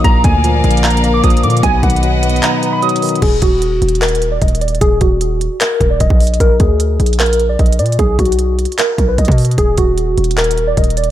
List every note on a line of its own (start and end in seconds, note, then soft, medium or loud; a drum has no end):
0.04 0.23 A#1 loud
0.04 1.04 A#2 medium
0.04 1.62 A#3 medium
0.04 1.62 A#4 medium
0.04 1.62 D5 medium
0.04 1.62 F5 medium
0.04 0.22 A#5 loud
0.04 kick loud
0.04 closed hi-hat medium
0.24 0.62 D2 loud
0.24 1.24 D3 medium
0.24 0.80 G#5 medium
0.24 kick loud
0.24 closed hi-hat medium
0.44 1.23 F3 medium
0.44 closed hi-hat medium
0.64 1.21 A#1 loud
0.64 1.03 A#3 medium
0.64 closed hi-hat medium
0.71 closed hi-hat medium
0.77 closed hi-hat medium
0.84 1.63 D4 loud
0.84 1.12 A#5 medium
0.84 clap loud
0.84 closed hi-hat soft
0.90 closed hi-hat medium
0.97 closed hi-hat medium
1.04 1.63 A#3 medium
1.04 closed hi-hat medium
1.14 1.22 D6 medium
1.24 1.45 A#1 loud
1.24 1.63 F3 loud
1.24 1.41 D#6 medium
1.24 kick medium
1.24 closed hi-hat medium
1.30 closed hi-hat medium
1.37 closed hi-hat medium
1.43 1.62 A#2 loud
1.43 1.63 D3 medium
1.43 1.61 D6 medium
1.43 closed hi-hat medium
1.50 closed hi-hat medium
1.57 closed hi-hat medium
1.63 1.82 B1 loud
1.63 2.63 B2 medium
1.63 3.21 B3 medium
1.63 3.21 B4 medium
1.63 3.21 D#5 medium
1.63 3.21 F#5 medium
1.63 1.81 G#5 loud
1.63 kick loud
1.63 closed hi-hat medium
1.83 2.40 B1 loud
1.83 2.83 D#3 medium
1.83 2.39 F#5 medium
1.83 kick loud
1.83 closed hi-hat medium
1.90 closed hi-hat medium
1.96 closed hi-hat medium
2.03 2.81 F#3 medium
2.03 closed hi-hat medium
2.23 2.62 B3 medium
2.23 closed hi-hat medium
2.30 closed hi-hat medium
2.36 closed hi-hat soft
2.43 3.22 D#4 loud
2.43 2.71 A#5 medium
2.43 clap loud
2.43 closed hi-hat medium
2.63 3.22 B3 medium
2.63 closed hi-hat medium
2.73 2.81 B5 medium
2.82 3.22 F#3 medium
2.82 3.20 D#6 medium
2.82 closed hi-hat medium
2.89 closed hi-hat medium
2.96 closed hi-hat medium
3.02 3.22 D#3 medium
3.02 closed hi-hat medium
3.02 open hi-hat medium
3.09 closed hi-hat medium
3.15 closed hi-hat medium
3.22 3.41 D#1 loud
3.22 3.39 G#4 loud
3.22 kick loud
3.22 closed hi-hat medium
3.22 crash medium
3.42 3.80 D#1 loud
3.42 3.98 F#4 medium
3.42 kick medium
3.42 closed hi-hat medium
3.62 closed hi-hat medium
3.82 4.39 D#1 loud
3.82 closed hi-hat medium
3.89 closed hi-hat medium
3.95 closed hi-hat medium
4.02 4.30 A#4 medium
4.02 clap loud
4.02 closed hi-hat soft
4.08 closed hi-hat medium
4.15 closed hi-hat medium
4.22 closed hi-hat medium
4.32 4.40 D5 medium
4.42 4.80 D#1 loud
4.42 4.59 D#5 medium
4.42 kick medium
4.42 closed hi-hat medium
4.48 closed hi-hat medium
4.55 closed hi-hat medium
4.61 4.79 D5 medium
4.61 closed hi-hat medium
4.68 closed hi-hat medium
4.75 closed hi-hat medium
4.81 5.00 D#1 loud
4.81 4.99 G#4 loud
4.81 kick loud
4.81 closed hi-hat medium
5.01 5.49 D#1 loud
5.01 5.57 F#4 medium
5.01 kick loud
5.01 closed hi-hat medium
5.21 closed hi-hat medium
5.41 closed hi-hat medium
5.61 5.89 A#4 medium
5.61 clap loud
5.61 closed hi-hat medium
5.81 6.00 D#1 loud
5.81 kick medium
5.81 closed hi-hat medium
5.90 5.99 D5 medium
6.00 6.10 D#1 loud
6.00 6.38 D#5 medium
6.00 kick medium
6.00 closed hi-hat medium
6.10 6.39 A#1 loud
6.10 kick loud
6.20 closed hi-hat medium
6.20 open hi-hat medium
6.27 closed hi-hat medium
6.34 closed hi-hat medium
6.40 6.59 A#1 loud
6.40 6.58 A#4 loud
6.40 kick loud
6.40 closed hi-hat medium
6.60 6.98 D2 loud
6.60 7.16 G#4 medium
6.60 kick loud
6.60 closed hi-hat medium
6.80 closed hi-hat medium
7.00 7.57 A#1 loud
7.00 closed hi-hat medium
7.06 closed hi-hat medium
7.13 closed hi-hat medium
7.20 7.48 A#4 medium
7.20 clap loud
7.20 closed hi-hat soft
7.26 closed hi-hat medium
7.33 closed hi-hat medium
7.40 closed hi-hat medium
7.49 7.58 D5 medium
7.59 7.81 A#1 loud
7.59 7.77 D#5 medium
7.59 kick medium
7.59 closed hi-hat medium
7.66 closed hi-hat medium
7.73 closed hi-hat medium
7.79 7.98 A#2 medium
7.79 7.96 D5 medium
7.79 closed hi-hat medium
7.86 closed hi-hat medium
7.92 closed hi-hat medium
7.99 8.18 B1 loud
7.99 8.16 G#4 loud
7.99 kick loud
7.99 closed hi-hat medium
8.19 8.67 B1 loud
8.19 8.75 F#4 medium
8.19 kick loud
8.19 closed hi-hat medium
8.25 closed hi-hat medium
8.32 closed hi-hat medium
8.39 closed hi-hat medium
8.59 closed hi-hat medium
8.65 closed hi-hat medium
8.72 closed hi-hat soft
8.78 9.07 A#4 medium
8.78 clap loud
8.78 closed hi-hat medium
8.98 9.17 B1 loud
8.98 kick medium
8.98 closed hi-hat medium
9.08 9.17 B4 medium
9.18 9.28 B1 loud
9.18 9.56 D#5 medium
9.18 kick medium
9.18 closed hi-hat medium
9.25 9.57 B2 loud
9.25 kick loud
9.25 closed hi-hat medium
9.32 closed hi-hat medium
9.38 closed hi-hat medium
9.38 open hi-hat medium
9.45 closed hi-hat medium
9.51 closed hi-hat medium
9.58 9.77 D#1 loud
9.58 9.75 G#4 loud
9.58 kick loud
9.58 closed hi-hat medium
9.78 10.16 D#1 loud
9.78 10.34 F#4 medium
9.78 kick loud
9.78 closed hi-hat medium
9.98 closed hi-hat medium
10.18 10.75 D#1 loud
10.18 closed hi-hat medium
10.24 closed hi-hat medium
10.31 closed hi-hat medium
10.38 10.66 A#4 medium
10.38 clap loud
10.38 closed hi-hat soft
10.44 closed hi-hat medium
10.51 closed hi-hat medium
10.58 closed hi-hat medium
10.67 10.76 D5 medium
10.77 11.11 D#1 loud
10.77 10.95 D#5 medium
10.77 kick medium
10.77 closed hi-hat medium
10.84 closed hi-hat medium
10.90 closed hi-hat medium
10.97 11.11 D5 medium
10.97 closed hi-hat medium
11.04 closed hi-hat medium